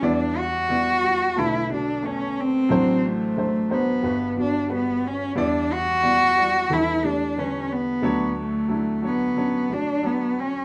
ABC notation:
X:1
M:4/4
L:1/8
Q:1/4=90
K:Edor
V:1 name="Grand piano"
[G,Ed]2 [G,Ed] [G,EF] [A,DB]2 [A,B,c]2 | [F,D=c]2 [F,Dc] [F,Dc] [G,FB]2 [G,FB]2 | [G,Ed]2 [G,Ed] [G,Ed] [G,DA]2 [D,G,B]2 | [F,Dc]2 [F,DE] [F,Dc] [F,Dc]2 [F,Dc]2 |]
V:2 name="Grand piano" clef=bass
[E,,E,]4 [B,,,D,]4 | [A,,,A,,]4 [G,,,G,,]4 | [E,,E,]4 [E,,E,]4 | [D,,D,]8 |]
V:3 name="Cello"
D F3 E D C =C- | =C A,2 B,2 D B, ^C | D F3 E D C B,- | B, A,2 B,2 D B, C |]
V:4 name="Felt piano"
B,2 B,2 A, [A,F]3 | F,2 A,2 z [B,F]3 | B,2 B,2 E, [A,G]3 | A,2 A,2 C [A,F]3 |]